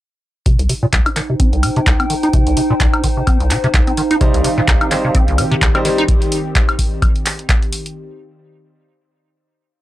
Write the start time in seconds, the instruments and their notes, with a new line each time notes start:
0.46 acid bass C3, ambient pad D#4, kick, closed hi-hat
0.59 acid bass C2, closed hi-hat
0.69 acid bass C3, open hi-hat
0.79 acid bass A#2, ambient pad C5
0.93 acid bass C2, kick, clap, closed hi-hat
1.06 acid bass D#4, closed hi-hat, high woodblock
1.16 acid bass D#3, ambient pad G5, clap, open hi-hat
1.30 acid bass C3
1.40 acid bass C4, kick, closed hi-hat
1.53 acid bass C2, closed hi-hat
1.63 acid bass C3, open hi-hat, high woodblock
1.76 acid bass C3, closed hi-hat
1.86 acid bass C2, kick, clap, closed hi-hat
2.00 acid bass C4, closed hi-hat, high woodblock
2.10 acid bass D#3, open hi-hat
2.23 acid bass D#4, closed hi-hat
2.33 acid bass C3, kick, closed hi-hat
2.47 acid bass C2, closed hi-hat
2.57 acid bass C3, open hi-hat
2.70 acid bass A#2
2.80 acid bass C2, kick, clap, closed hi-hat
2.94 acid bass D#4, closed hi-hat, high woodblock
3.04 acid bass D#3, kick, open hi-hat
3.17 acid bass C3
3.27 acid bass C4, kick, closed hi-hat, high woodblock
3.40 acid bass C2, closed hi-hat
3.51 acid bass C3, clap, open hi-hat
3.64 acid bass C3, closed hi-hat
3.74 acid bass C2, kick, clap, closed hi-hat
3.80 ambient pad F5
3.87 acid bass C4, closed hi-hat
3.97 acid bass D#3, open hi-hat
4.11 acid bass D#4, closed hi-hat
4.21 acid bass C3, analog synth pad D#3 C4 G4, grand piano G3 D#4 C5, kick, closed hi-hat
4.34 acid bass C2, closed hi-hat
4.44 acid bass C3, open hi-hat
4.58 acid bass A#2
4.68 acid bass C2, kick, clap, closed hi-hat
4.81 acid bass D#4, closed hi-hat, high woodblock
4.91 acid bass D#3, grand piano G3 D#4 C5, clap, open hi-hat
5.04 acid bass C3
5.15 acid bass C4, kick, closed hi-hat
5.28 acid bass C2, closed hi-hat
5.38 acid bass C3, open hi-hat, high woodblock
5.51 acid bass C3, closed hi-hat
5.62 acid bass C2, kick, clap, closed hi-hat
5.75 grand piano G3 D#4 C5, acid bass C4, closed hi-hat, high woodblock
5.85 acid bass D#3, grand piano G3 D#4 C5, open hi-hat
5.98 acid bass D#4, closed hi-hat
6.08 kick, closed hi-hat
6.22 closed hi-hat
6.32 open hi-hat
6.55 kick, clap, closed hi-hat
6.69 closed hi-hat, high woodblock
6.79 kick, open hi-hat
7.02 kick, closed hi-hat, high woodblock
7.16 closed hi-hat
7.26 clap, open hi-hat
7.39 closed hi-hat
7.49 kick, clap, closed hi-hat
7.62 closed hi-hat
7.73 open hi-hat
7.86 closed hi-hat